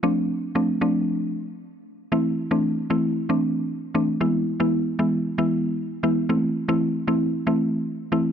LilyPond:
\new Staff \with { instrumentName = "Synth pluck" } { \time 4/4 \key a \minor \tempo 4 = 115 <f a c' d'>8 r8 <f a c' d'>16 r16 <f a c' d'>4 r4. | <e a c' e'>8 r16 <e a c' d'>8 r16 <e a c' e'>8 r16 <e a c' d'>8. r8 <e a c' d'>16 r16 | <e gis b e'>8 r16 <e gis b e'>8 r16 <e gis b e'>8 r16 <e gis b e'>8. r8 <e gis b e'>16 r16 | <e a c' e'>8 r16 <e a c' e'>8 r16 <e a c' e'>8 r16 <e a c' e'>8. r8 <e a c' e'>16 r16 | }